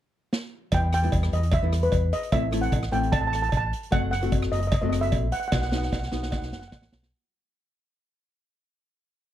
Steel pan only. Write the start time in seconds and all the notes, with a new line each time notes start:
0.74 G5
0.94 G5
1.33 D#5
1.54 E5
1.83 B4
2.13 D#5
2.32 E5
2.62 F#5
2.92 G5
3.12 A5
3.21 A5
3.27 A5
3.35 A5
3.42 A5
3.49 A5
3.57 A5
3.92 F#5
4.11 F#5
4.52 D#5
4.60 D#5
4.67 D#5
4.74 D#5
4.82 D#5
4.89 D#5
5.01 E5
5.32 F#5
5.40 F#5
5.48 F#5
5.55 F#5
5.62 F#5
5.69 F#5
5.77 F#5
5.85 F#5
5.92 F#5
6.00 F#5
6.08 F#5
6.15 F#5
6.23 F#5
6.31 F#5
6.38 F#5
6.53 F#5
6.59 F#5
6.68 F#5
6.75 F#5